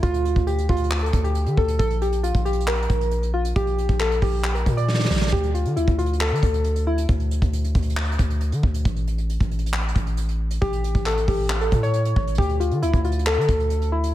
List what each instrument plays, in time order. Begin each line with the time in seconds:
0.03 808-style bass D2, synth keys F4, kick, closed hi-hat
0.14 closed hi-hat
0.25 closed hi-hat
0.36 808-style bass D2, kick, closed hi-hat
0.47 synth keys G4, closed hi-hat
0.58 closed hi-hat
0.69 808-style bass D2, synth keys F4, kick, closed hi-hat
0.77 closed hi-hat
0.84 closed hi-hat
0.91 clap, closed hi-hat
0.99 closed hi-hat
1.03 synth keys A4, closed hi-hat
1.13 808-style bass D2, kick, closed hi-hat
1.24 synth keys G4, closed hi-hat
1.35 closed hi-hat
1.46 808-style bass D3, closed hi-hat
1.57 808-style bass D2, synth keys A4, kick
1.68 closed hi-hat
1.79 808-style bass A#1, synth keys A4, kick, closed hi-hat
1.90 closed hi-hat
2.02 synth keys G4, closed hi-hat
2.12 closed hi-hat
2.23 synth keys F4, closed hi-hat
2.35 808-style bass A#1, kick, closed hi-hat
2.45 synth keys G4, closed hi-hat
2.53 closed hi-hat
2.60 closed hi-hat
2.68 synth keys A#4, clap, closed hi-hat
2.75 closed hi-hat
2.82 closed hi-hat
2.90 808-style bass A#1, kick, closed hi-hat
3.01 closed hi-hat
3.11 closed hi-hat
3.23 closed hi-hat
3.34 synth keys F4
3.45 closed hi-hat
3.56 808-style bass A#1, synth keys G4, kick, closed hi-hat
3.67 closed hi-hat
3.78 closed hi-hat
3.89 808-style bass A#1, kick, closed hi-hat
4.00 synth keys A4, clap, closed hi-hat
4.12 closed hi-hat
4.22 808-style bass A#1, synth keys G4, kick, open hi-hat
4.44 clap, closed hi-hat
4.55 synth keys A#4, closed hi-hat
4.66 808-style bass A#2, kick, closed hi-hat
4.77 synth keys D5, closed hi-hat
4.88 snare
4.94 snare
4.99 snare
5.05 snare
5.10 808-style bass A#1, snare
5.16 snare
5.21 snare
5.27 snare
5.32 808-style bass D2, synth keys G4, kick, closed hi-hat
5.43 closed hi-hat
5.54 synth keys F4, closed hi-hat
5.66 808-style bass D3, closed hi-hat
5.76 808-style bass D2, synth keys E4, closed hi-hat
5.88 808-style bass D2, kick, closed hi-hat
5.98 synth keys F4, closed hi-hat
6.06 closed hi-hat
6.13 closed hi-hat
6.21 synth keys A4, clap, closed hi-hat
6.28 808-style bass D3, closed hi-hat
6.35 closed hi-hat
6.43 808-style bass D2, kick, closed hi-hat
6.54 closed hi-hat
6.64 closed hi-hat
6.76 closed hi-hat
6.87 synth keys E4
6.98 closed hi-hat
7.09 808-style bass D2, kick, closed hi-hat
7.20 closed hi-hat
7.31 closed hi-hat
7.42 808-style bass D2, kick, closed hi-hat
7.53 closed hi-hat
7.64 closed hi-hat
7.75 808-style bass D2, kick, closed hi-hat
7.82 closed hi-hat
7.90 closed hi-hat
7.97 clap, closed hi-hat
8.04 closed hi-hat
8.12 closed hi-hat
8.19 808-style bass D2, kick, closed hi-hat
8.30 closed hi-hat
8.41 closed hi-hat
8.52 808-style bass D3, closed hi-hat
8.63 808-style bass D2, kick
8.74 closed hi-hat
8.85 808-style bass A1, kick, closed hi-hat
8.96 closed hi-hat
9.08 closed hi-hat
9.18 closed hi-hat
9.30 closed hi-hat
9.40 808-style bass A1, kick, closed hi-hat
9.51 closed hi-hat
9.59 closed hi-hat
9.66 closed hi-hat
9.74 clap, closed hi-hat
9.81 closed hi-hat
9.88 closed hi-hat
9.96 808-style bass A1, kick, closed hi-hat
10.07 closed hi-hat
10.17 closed hi-hat
10.29 closed hi-hat
10.51 closed hi-hat
10.61 808-style bass A1, synth keys G4, kick, closed hi-hat
10.73 closed hi-hat
10.84 closed hi-hat
10.95 808-style bass A1, kick, closed hi-hat
11.06 synth keys A4, clap, closed hi-hat
11.17 closed hi-hat
11.28 808-style bass A1, synth keys G4, kick, open hi-hat
11.50 clap, closed hi-hat
11.61 synth keys A4, closed hi-hat
11.72 808-style bass A2, kick, closed hi-hat
11.83 synth keys C#5, closed hi-hat
11.94 closed hi-hat
12.05 closed hi-hat
12.16 808-style bass A1, kick
12.27 closed hi-hat
12.35 808-style bass D2, synth keys G4, kick, closed hi-hat
12.42 closed hi-hat
12.49 closed hi-hat
12.60 synth keys F4, closed hi-hat
12.71 808-style bass D3, closed hi-hat
12.82 808-style bass D2, synth keys E4, closed hi-hat
12.94 808-style bass D2, kick, closed hi-hat
13.04 synth keys F4, closed hi-hat
13.12 closed hi-hat
13.19 closed hi-hat
13.26 synth keys A4, clap, closed hi-hat
13.34 808-style bass D3, closed hi-hat
13.41 closed hi-hat
13.49 808-style bass D2, kick, closed hi-hat
13.60 closed hi-hat
13.70 closed hi-hat
13.82 closed hi-hat
13.92 synth keys E4
14.04 closed hi-hat